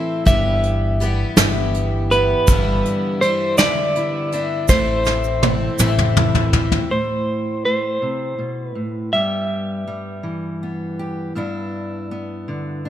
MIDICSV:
0, 0, Header, 1, 6, 480
1, 0, Start_track
1, 0, Key_signature, 0, "minor"
1, 0, Tempo, 740741
1, 172, Time_signature, 6, 3, 24, 8
1, 8353, End_track
2, 0, Start_track
2, 0, Title_t, "Clean electric guitar"
2, 0, Program_c, 0, 27
2, 0, Note_on_c, 0, 76, 94
2, 148, Note_off_c, 0, 76, 0
2, 174, Note_on_c, 0, 76, 80
2, 684, Note_off_c, 0, 76, 0
2, 1370, Note_on_c, 0, 71, 88
2, 2079, Note_off_c, 0, 71, 0
2, 2082, Note_on_c, 0, 72, 89
2, 2318, Note_off_c, 0, 72, 0
2, 2320, Note_on_c, 0, 74, 98
2, 3039, Note_off_c, 0, 74, 0
2, 3041, Note_on_c, 0, 72, 85
2, 4213, Note_off_c, 0, 72, 0
2, 4480, Note_on_c, 0, 72, 53
2, 4952, Note_off_c, 0, 72, 0
2, 4960, Note_on_c, 0, 72, 54
2, 5601, Note_off_c, 0, 72, 0
2, 5601, Note_on_c, 0, 71, 54
2, 5912, Note_off_c, 0, 71, 0
2, 5915, Note_on_c, 0, 76, 61
2, 7097, Note_off_c, 0, 76, 0
2, 8353, End_track
3, 0, Start_track
3, 0, Title_t, "Steel-string acoustic guitar"
3, 0, Program_c, 1, 25
3, 0, Note_on_c, 1, 45, 68
3, 0, Note_on_c, 1, 52, 59
3, 0, Note_on_c, 1, 60, 55
3, 0, Note_on_c, 1, 64, 60
3, 148, Note_off_c, 1, 60, 0
3, 177, Note_on_c, 1, 43, 69
3, 178, Note_off_c, 1, 45, 0
3, 178, Note_off_c, 1, 64, 0
3, 181, Note_on_c, 1, 67, 65
3, 654, Note_on_c, 1, 59, 56
3, 888, Note_off_c, 1, 52, 0
3, 891, Note_on_c, 1, 52, 61
3, 1127, Note_off_c, 1, 67, 0
3, 1135, Note_on_c, 1, 67, 59
3, 1368, Note_off_c, 1, 59, 0
3, 1376, Note_on_c, 1, 59, 58
3, 1578, Note_off_c, 1, 43, 0
3, 1580, Note_off_c, 1, 67, 0
3, 1606, Note_on_c, 1, 43, 71
3, 1611, Note_on_c, 1, 64, 61
3, 2085, Note_off_c, 1, 59, 0
3, 2088, Note_on_c, 1, 62, 57
3, 2107, Note_off_c, 1, 52, 0
3, 2323, Note_on_c, 1, 50, 62
3, 2568, Note_off_c, 1, 64, 0
3, 2571, Note_on_c, 1, 64, 67
3, 2800, Note_off_c, 1, 62, 0
3, 2808, Note_on_c, 1, 62, 61
3, 3012, Note_off_c, 1, 43, 0
3, 3015, Note_off_c, 1, 62, 0
3, 3040, Note_off_c, 1, 50, 0
3, 3040, Note_on_c, 1, 45, 70
3, 3041, Note_off_c, 1, 64, 0
3, 3044, Note_on_c, 1, 64, 63
3, 3530, Note_on_c, 1, 60, 55
3, 3764, Note_on_c, 1, 52, 58
3, 3999, Note_off_c, 1, 64, 0
3, 4007, Note_on_c, 1, 64, 61
3, 4238, Note_off_c, 1, 60, 0
3, 4245, Note_on_c, 1, 60, 52
3, 4452, Note_off_c, 1, 52, 0
3, 4453, Note_off_c, 1, 60, 0
3, 4467, Note_off_c, 1, 45, 0
3, 4474, Note_on_c, 1, 45, 48
3, 4478, Note_on_c, 1, 57, 41
3, 4479, Note_off_c, 1, 64, 0
3, 4487, Note_on_c, 1, 64, 44
3, 4959, Note_off_c, 1, 57, 0
3, 4967, Note_on_c, 1, 57, 37
3, 5194, Note_off_c, 1, 45, 0
3, 5197, Note_on_c, 1, 48, 43
3, 5430, Note_off_c, 1, 48, 0
3, 5433, Note_on_c, 1, 47, 42
3, 5670, Note_off_c, 1, 47, 0
3, 5672, Note_on_c, 1, 45, 41
3, 5897, Note_off_c, 1, 57, 0
3, 5914, Note_on_c, 1, 43, 48
3, 5917, Note_off_c, 1, 45, 0
3, 5917, Note_on_c, 1, 55, 40
3, 5921, Note_on_c, 1, 59, 41
3, 5923, Note_off_c, 1, 64, 0
3, 5926, Note_on_c, 1, 67, 47
3, 6396, Note_off_c, 1, 55, 0
3, 6399, Note_on_c, 1, 55, 40
3, 6631, Note_on_c, 1, 52, 45
3, 6879, Note_off_c, 1, 59, 0
3, 6887, Note_on_c, 1, 59, 38
3, 7116, Note_off_c, 1, 67, 0
3, 7124, Note_on_c, 1, 67, 46
3, 7334, Note_off_c, 1, 43, 0
3, 7337, Note_off_c, 1, 67, 0
3, 7353, Note_off_c, 1, 59, 0
3, 7357, Note_on_c, 1, 43, 52
3, 7359, Note_off_c, 1, 55, 0
3, 7361, Note_on_c, 1, 59, 44
3, 7366, Note_on_c, 1, 62, 44
3, 7372, Note_on_c, 1, 64, 48
3, 7385, Note_off_c, 1, 52, 0
3, 7842, Note_off_c, 1, 59, 0
3, 7849, Note_on_c, 1, 59, 43
3, 8087, Note_on_c, 1, 50, 47
3, 8321, Note_off_c, 1, 62, 0
3, 8328, Note_on_c, 1, 62, 42
3, 8353, Note_off_c, 1, 43, 0
3, 8353, Note_off_c, 1, 50, 0
3, 8353, Note_off_c, 1, 59, 0
3, 8353, Note_off_c, 1, 62, 0
3, 8353, Note_off_c, 1, 64, 0
3, 8353, End_track
4, 0, Start_track
4, 0, Title_t, "Twelve-string acoustic guitar"
4, 0, Program_c, 2, 25
4, 0, Note_on_c, 2, 52, 54
4, 0, Note_on_c, 2, 60, 41
4, 0, Note_on_c, 2, 64, 48
4, 0, Note_on_c, 2, 69, 47
4, 162, Note_off_c, 2, 52, 0
4, 165, Note_on_c, 2, 55, 74
4, 167, Note_off_c, 2, 64, 0
4, 169, Note_off_c, 2, 60, 0
4, 172, Note_on_c, 2, 59, 65
4, 173, Note_off_c, 2, 69, 0
4, 175, Note_on_c, 2, 64, 69
4, 177, Note_on_c, 2, 67, 81
4, 647, Note_off_c, 2, 55, 0
4, 649, Note_on_c, 2, 55, 58
4, 657, Note_off_c, 2, 59, 0
4, 659, Note_off_c, 2, 64, 0
4, 659, Note_on_c, 2, 59, 64
4, 662, Note_on_c, 2, 64, 59
4, 666, Note_off_c, 2, 67, 0
4, 668, Note_on_c, 2, 67, 61
4, 882, Note_off_c, 2, 67, 0
4, 885, Note_off_c, 2, 64, 0
4, 887, Note_off_c, 2, 59, 0
4, 888, Note_off_c, 2, 55, 0
4, 890, Note_on_c, 2, 67, 70
4, 893, Note_on_c, 2, 64, 70
4, 895, Note_on_c, 2, 59, 70
4, 901, Note_on_c, 2, 55, 65
4, 1358, Note_off_c, 2, 67, 0
4, 1366, Note_on_c, 2, 67, 51
4, 1369, Note_off_c, 2, 59, 0
4, 1372, Note_off_c, 2, 55, 0
4, 1375, Note_off_c, 2, 64, 0
4, 1377, Note_on_c, 2, 64, 46
4, 1383, Note_on_c, 2, 59, 40
4, 1600, Note_on_c, 2, 43, 71
4, 1603, Note_off_c, 2, 59, 0
4, 1603, Note_on_c, 2, 50, 82
4, 1604, Note_off_c, 2, 64, 0
4, 1604, Note_off_c, 2, 67, 0
4, 1608, Note_on_c, 2, 52, 79
4, 1611, Note_on_c, 2, 59, 77
4, 1612, Note_on_c, 2, 55, 73
4, 1612, Note_on_c, 2, 64, 77
4, 2080, Note_off_c, 2, 43, 0
4, 2082, Note_off_c, 2, 50, 0
4, 2083, Note_off_c, 2, 52, 0
4, 2085, Note_off_c, 2, 55, 0
4, 2086, Note_off_c, 2, 59, 0
4, 2086, Note_on_c, 2, 52, 60
4, 2093, Note_on_c, 2, 55, 62
4, 2097, Note_off_c, 2, 64, 0
4, 2100, Note_on_c, 2, 64, 60
4, 2317, Note_off_c, 2, 64, 0
4, 2320, Note_off_c, 2, 55, 0
4, 2323, Note_off_c, 2, 52, 0
4, 2324, Note_on_c, 2, 59, 68
4, 2325, Note_on_c, 2, 64, 72
4, 2328, Note_on_c, 2, 55, 60
4, 2330, Note_on_c, 2, 50, 58
4, 2333, Note_on_c, 2, 43, 56
4, 2335, Note_on_c, 2, 52, 59
4, 2801, Note_off_c, 2, 59, 0
4, 2801, Note_off_c, 2, 64, 0
4, 2803, Note_off_c, 2, 55, 0
4, 2804, Note_off_c, 2, 50, 0
4, 2804, Note_on_c, 2, 64, 54
4, 2806, Note_off_c, 2, 43, 0
4, 2812, Note_on_c, 2, 59, 50
4, 2813, Note_on_c, 2, 55, 45
4, 2818, Note_off_c, 2, 52, 0
4, 2820, Note_on_c, 2, 52, 43
4, 3039, Note_off_c, 2, 52, 0
4, 3041, Note_off_c, 2, 64, 0
4, 3042, Note_off_c, 2, 55, 0
4, 3044, Note_on_c, 2, 45, 75
4, 3044, Note_on_c, 2, 57, 78
4, 3046, Note_off_c, 2, 59, 0
4, 3046, Note_on_c, 2, 52, 77
4, 3048, Note_on_c, 2, 60, 82
4, 3054, Note_on_c, 2, 64, 84
4, 3508, Note_off_c, 2, 52, 0
4, 3513, Note_off_c, 2, 57, 0
4, 3516, Note_off_c, 2, 60, 0
4, 3516, Note_on_c, 2, 52, 60
4, 3521, Note_off_c, 2, 45, 0
4, 3521, Note_on_c, 2, 57, 58
4, 3523, Note_off_c, 2, 64, 0
4, 3524, Note_on_c, 2, 60, 59
4, 3531, Note_on_c, 2, 64, 66
4, 3746, Note_off_c, 2, 64, 0
4, 3752, Note_off_c, 2, 57, 0
4, 3752, Note_off_c, 2, 60, 0
4, 3754, Note_off_c, 2, 52, 0
4, 3754, Note_on_c, 2, 64, 71
4, 3760, Note_on_c, 2, 57, 70
4, 3760, Note_on_c, 2, 60, 76
4, 3762, Note_on_c, 2, 52, 59
4, 3767, Note_on_c, 2, 45, 59
4, 4226, Note_off_c, 2, 64, 0
4, 4233, Note_on_c, 2, 64, 49
4, 4235, Note_off_c, 2, 60, 0
4, 4239, Note_off_c, 2, 57, 0
4, 4240, Note_off_c, 2, 52, 0
4, 4243, Note_off_c, 2, 45, 0
4, 4243, Note_on_c, 2, 60, 54
4, 4251, Note_on_c, 2, 57, 41
4, 4476, Note_off_c, 2, 64, 0
4, 4481, Note_off_c, 2, 60, 0
4, 4485, Note_off_c, 2, 57, 0
4, 8353, End_track
5, 0, Start_track
5, 0, Title_t, "Upright bass"
5, 0, Program_c, 3, 32
5, 169, Note_on_c, 3, 31, 90
5, 795, Note_off_c, 3, 31, 0
5, 885, Note_on_c, 3, 31, 93
5, 1512, Note_off_c, 3, 31, 0
5, 1608, Note_on_c, 3, 31, 91
5, 1815, Note_off_c, 3, 31, 0
5, 3039, Note_on_c, 3, 33, 92
5, 3667, Note_off_c, 3, 33, 0
5, 3753, Note_on_c, 3, 33, 91
5, 4384, Note_off_c, 3, 33, 0
5, 8353, End_track
6, 0, Start_track
6, 0, Title_t, "Drums"
6, 169, Note_on_c, 9, 42, 76
6, 173, Note_on_c, 9, 36, 99
6, 175, Note_on_c, 9, 82, 73
6, 234, Note_off_c, 9, 42, 0
6, 237, Note_off_c, 9, 36, 0
6, 240, Note_off_c, 9, 82, 0
6, 410, Note_on_c, 9, 42, 59
6, 475, Note_off_c, 9, 42, 0
6, 653, Note_on_c, 9, 42, 60
6, 718, Note_off_c, 9, 42, 0
6, 887, Note_on_c, 9, 38, 102
6, 887, Note_on_c, 9, 42, 75
6, 890, Note_on_c, 9, 82, 89
6, 952, Note_off_c, 9, 38, 0
6, 952, Note_off_c, 9, 42, 0
6, 955, Note_off_c, 9, 82, 0
6, 1130, Note_on_c, 9, 42, 63
6, 1195, Note_off_c, 9, 42, 0
6, 1371, Note_on_c, 9, 42, 66
6, 1436, Note_off_c, 9, 42, 0
6, 1604, Note_on_c, 9, 82, 90
6, 1608, Note_on_c, 9, 36, 110
6, 1608, Note_on_c, 9, 42, 84
6, 1668, Note_off_c, 9, 82, 0
6, 1672, Note_off_c, 9, 36, 0
6, 1673, Note_off_c, 9, 42, 0
6, 1849, Note_on_c, 9, 42, 63
6, 1914, Note_off_c, 9, 42, 0
6, 2088, Note_on_c, 9, 42, 64
6, 2153, Note_off_c, 9, 42, 0
6, 2321, Note_on_c, 9, 82, 87
6, 2325, Note_on_c, 9, 38, 96
6, 2325, Note_on_c, 9, 42, 80
6, 2386, Note_off_c, 9, 82, 0
6, 2390, Note_off_c, 9, 38, 0
6, 2390, Note_off_c, 9, 42, 0
6, 2563, Note_on_c, 9, 42, 57
6, 2628, Note_off_c, 9, 42, 0
6, 2800, Note_on_c, 9, 42, 63
6, 2865, Note_off_c, 9, 42, 0
6, 3036, Note_on_c, 9, 82, 79
6, 3040, Note_on_c, 9, 36, 104
6, 3040, Note_on_c, 9, 38, 57
6, 3100, Note_off_c, 9, 82, 0
6, 3105, Note_off_c, 9, 36, 0
6, 3105, Note_off_c, 9, 38, 0
6, 3273, Note_on_c, 9, 82, 24
6, 3282, Note_on_c, 9, 38, 65
6, 3338, Note_off_c, 9, 82, 0
6, 3347, Note_off_c, 9, 38, 0
6, 3395, Note_on_c, 9, 82, 25
6, 3460, Note_off_c, 9, 82, 0
6, 3517, Note_on_c, 9, 48, 73
6, 3582, Note_off_c, 9, 48, 0
6, 3751, Note_on_c, 9, 82, 85
6, 3756, Note_on_c, 9, 47, 76
6, 3816, Note_off_c, 9, 82, 0
6, 3821, Note_off_c, 9, 47, 0
6, 3878, Note_on_c, 9, 45, 69
6, 3943, Note_off_c, 9, 45, 0
6, 3996, Note_on_c, 9, 45, 85
6, 4060, Note_off_c, 9, 45, 0
6, 4113, Note_on_c, 9, 43, 76
6, 4178, Note_off_c, 9, 43, 0
6, 4232, Note_on_c, 9, 43, 92
6, 4297, Note_off_c, 9, 43, 0
6, 4353, Note_on_c, 9, 43, 81
6, 4418, Note_off_c, 9, 43, 0
6, 8353, End_track
0, 0, End_of_file